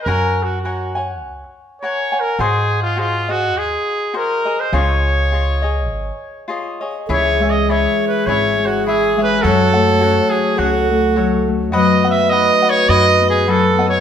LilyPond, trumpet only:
\new Staff \with { instrumentName = "Trumpet" } { \time 4/4 \key des \major \tempo 4 = 103 \tuplet 3/2 { bes'4 ges'8 } ges'8. r4 r16 \tuplet 3/2 { des''4 bes'8 } | \tuplet 3/2 { aes'4 f'8 } f'8 ges'8 aes'4 bes'8. c''16 | des''2. r4 | \key cis \minor \tuplet 3/2 { cis''4 dis''8 cis''4 b'8 cis''4 fis'8 gis'4 b'8 } |
a'4. gis'8 fis'4. r8 | \tuplet 3/2 { dis''4 e''8 dis''4 cis''8 dis''4 gis'8 a'4 cis''8 } | }